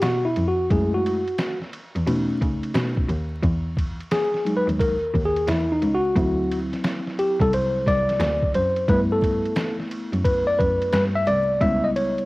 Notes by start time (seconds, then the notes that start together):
0.02 B2 F#4, snare, hi-hat pedal, ride
0.25 E4
0.36 F2, ride
0.48 F#4
0.70 F#2 G#3 A3 E4 G#4, kick, ride
0.94 F#4
1.06 ride
1.27 ride
1.38 snare, hi-hat pedal, ride
1.61 snare
1.73 ride
1.95 E2, ride
2.06 B2 A3 C#4 D#4, ride
2.41 C#3, kick, ride
2.63 ride
2.74 B2, snare, hi-hat pedal, ride
2.97 kick
3.09 D#2, ride
3.43 E2, kick, ride
3.77 kick, ride
4.00 ride
4.11 G#4, snare, hi-hat pedal, ride
4.34 snare
4.45 F#3 G#3 D#4, ride
4.57 B4
4.68 D#2, ride
4.80 A#4, kick, ride
5.14 D#2, kick, ride
5.25 G#4
5.36 ride
5.47 E2 E4, snare, hi-hat pedal, ride
5.72 D#4
5.82 C#2, ride
5.94 F#4
6.16 D2 F#3 C4 E4, kick, ride
6.51 ride
6.73 snare, ride
6.84 snare, hi-hat pedal, ride
7.07 snare
7.19 G4, ride
7.40 C2 A4, kick, ride
7.53 C5, ride
7.87 C2 D5, kick, snare, ride
8.09 snare, ride
8.20 D2, snare, hi-hat pedal, ride
8.43 kick
8.54 F#2 C5, ride
8.76 ride
8.88 G2 A3 B3 E4 B4, kick, ride
9.12 A4
9.22 kick, ride
9.46 ride
9.56 snare, hi-hat pedal, ride
9.80 snare
9.91 ride
10.13 F#2, ride
10.25 B4, kick, ride
10.47 D5
10.59 F#2 B4, kick, ride
10.82 ride
10.92 G2 B4, snare, hi-hat pedal, ride
11.15 E5
11.27 C2 D5, ride
11.61 C#2 G3 B3 E4 E5, kick, ride
11.84 D#5
11.96 C#5, ride
12.18 ride